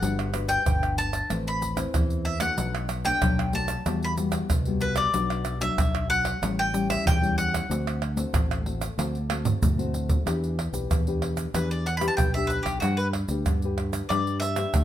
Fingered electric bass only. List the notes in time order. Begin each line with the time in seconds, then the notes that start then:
0.02 G1
0.66 G1
1.31 A1
1.95 E2
2.58 B1
3.23 B1
3.86 E2
4.51 C2
5.14 B1
5.78 B1
6.42 A1
7.06 E2
7.70 D2
8.33 A1
8.98 D2
9.62 D2
10.26 E2
10.73 B1
10.91 E2
11.54 E2
12.19 B1
12.65 B1
12.82 G2
13.28 D2
13.46 G2
14.10 G2
14.74 D2